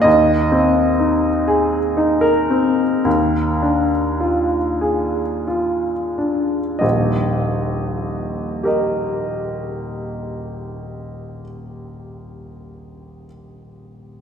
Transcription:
0.02 D#2 D#5
0.52 C4
1.00 D#4
1.48 G#4
1.97 D#4
2.21 A#4
2.50 C4
3.05 D#2
3.62 D4
4.20 F4
4.81 G#4
5.47 F4
6.18 D4
6.79 D#1 A#1 D#5
8.63 G4 A#4 D#5

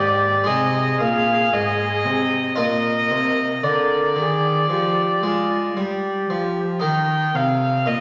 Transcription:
Already playing: G#2 D#4 G4 A#4 D5
0.00 G#2
0.44 G#3 D#4 G#4 D#5
0.48 C3 G#4
1.00 A#2 F5
1.53 G#2 D#5
2.05 C3
2.56 A#2 F4 A#4 D#5
3.10 C3
3.63 D3 A#4 D5
4.16 D#3 G#4
4.69 F3 G4
5.22 G#3 F4
5.76 G3 G4
6.29 F3
6.80 D#3 D#4 A#4 G5
7.34 C3 F5
7.86 A#2 D#5

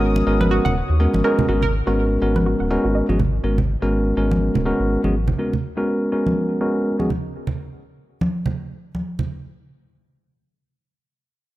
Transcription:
Already playing: G#1 G#3 B3 C#4 F#4 A#4 C#5 D#6
0.16 muted conga
0.27 G#1 G#3 B3 C#4 F#4 A#4
0.41 B4, high conga
0.51 F#4
0.65 D#1 F#5, low conga
0.90 D#2
1.00 G#3 B3 C#4 F#4 A#4
1.14 G#1, muted conga, high conga
1.24 G#3 B3 C#4 F#4 A#4
1.39 low conga
1.49 G#1 G#3 B3 C#4 F#4 A#4
1.62 A#4, low conga
1.87 G#1 G#3 B3 C#4 F#4 A#4
2.22 G#1 G#3 B3 C#4 F#4 A#4
2.36 B4, high conga
2.46 F#4
2.60 D#1 F#5
2.70 G#3 B3 C#4 F#4 A#4
2.85 G#1 F#4
2.95 D#5
3.09 G#1 G#3 B3 C#4 F#4 G#4, high conga
3.20 low conga
3.44 G#1 G#3 B3 C#4 F#4 A#4
3.58 low conga
3.82 G#1 G#3 B3 C#4 F#4 A#4
4.17 G#1 G#3 B3 C#4 F#4 A#4
4.31 high conga
4.55 D#1, low conga
4.66 G#3 B3 C#4 F#4 A#4
4.80 G#1
5.04 G#1 G#3 B3 C#4 F#4 G#4, high conga
5.28 low conga
5.39 G#3 B3 C#4 F#4 A#4
5.53 low conga
5.77 G#3 B3 C#4 F#4 A#4
6.12 G#3 B3 C#4 F#4 A#4
6.26 high conga
6.61 G#3 B3 C#4 F#4 A#4
6.99 G#3 B3 C#4 F#4 G#4, high conga
7.10 low conga
7.47 low conga
8.21 high conga
8.46 low conga
8.95 high conga
9.19 low conga

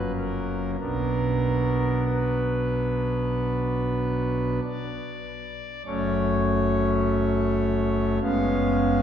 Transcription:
Already playing: F#1 F#2 F#3 A#3 C#4 B4
0.16 A#4
0.80 B1 B2 F#3 B3 D4 A#4
2.09 B4
4.63 D5
5.86 F#1 F#2 F#3 A3 C#4 C#5
8.21 F#1 F#2 G#3 B3 C#4 F5

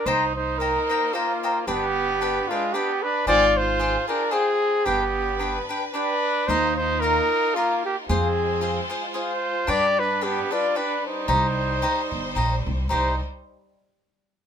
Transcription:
0.06 C2 A#3 D#4 C5 D#5 G5 A#5
0.36 D#4 C5
0.59 D#4 A#4 C5 D#5 G5 A#5
0.89 C5 D#5 G5 A#5
1.13 A#3 F4 C5 D#5 G5 A#5
1.43 C5 D#5 G5 A#5
1.66 G1 B3 D4 G4 B4 D5 G5
2.21 D4 B4 D5 G5
2.48 G#3 D4 F4 B4 D5 G5
2.73 B3 D4 G4 B4 D5 G5
3.03 D4 B4
3.26 G#1 F4 G#4 C5 D5 F5 G5
3.57 F4 C5
3.79 G#4 C5 F5 G5
4.08 D4 G#4 A#4 C5 F5 G5
4.31 C4 G#4 C5 F5 G5
4.85 G1 B3 D4 G4 B4 G5
5.39 D4 G4 B4 G5
5.69 D4 G4 B4 G5
5.93 D4 G4 B4 G5
6.47 D#2 D#4 F4 A#4 C5 D#5 F5
6.76 D#4 C5
7.01 D#4 F4 A#4 D#5 F5
7.55 A#3 F4 A#4 D#5 F5
7.85 A#3 G4
8.08 F2 G#3 C4 F4 G#4 C5 F5
8.61 F4 G#4 C5 F5
8.90 F4 G#4 C5 F5
9.14 F4 G#4 C5 F5
9.67 G2 G3 D4 G4 B4 D5
10.00 D4 B4
10.21 B3 D4 G4 B4 D5
10.51 D4 F4 G4 B4 D5
10.75 D4 G4 B4 D5
11.06 D#4 C5
11.28 C2 D#4 G4 C5 D#5
11.82 D#4 G4 C5 D#5
12.12 G1
12.35 A#1 D#4 G4 C5 D#5
12.66 C2
12.89 C2 G3 D#4 G4 C5 D#5

